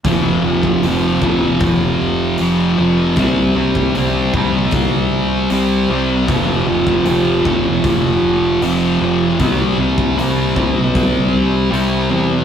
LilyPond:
<<
  \new Staff \with { instrumentName = "Distorted electric guitar" } { \clef bass \time 4/4 \key f \lydian \tempo 4 = 77 <f, c f>8 <c f>8 <f, c f>8 <c f>4. <f, c f>8 <c f>8 | <c g c'>8 <g c'>8 <c g c'>8 <g c'>4. <c g c'>8 <g c'>8 | <f, c f>8 <c f>8 <f, c f>8 <c f>4. <f, c f>8 <c f>8 | <c g c'>8 <g c'>8 <c g c'>8 <g c'>4. <c g c'>8 <g c'>8 | }
  \new Staff \with { instrumentName = "Fingered electric bass" } { \clef bass \time 4/4 \key f \lydian f,,8 f,,8 f,,8 f,,8 f,,8 f,,8 f,,8 f,,8 | c,8 c,8 c,8 c,8 c,8 c,8 c,8 c,8 | f,,8 f,,8 f,,8 f,,8 f,,8 f,,8 f,,8 f,,8 | c,8 c,8 c,8 c,8 c,8 c,8 c,8 e,8 | }
  \new DrumStaff \with { instrumentName = "Drums" } \drummode { \time 4/4 <hho bd>8. bd16 hho8 bd8 <hho bd>4 hho4 | <hho bd>8. bd16 hho8 bd8 <hho bd>4 hho4 | <hho bd>8. bd16 hho8 bd8 <hho bd>4 hho4 | <hho bd>8. bd16 hho8 bd8 <hho bd>4 hho4 | }
>>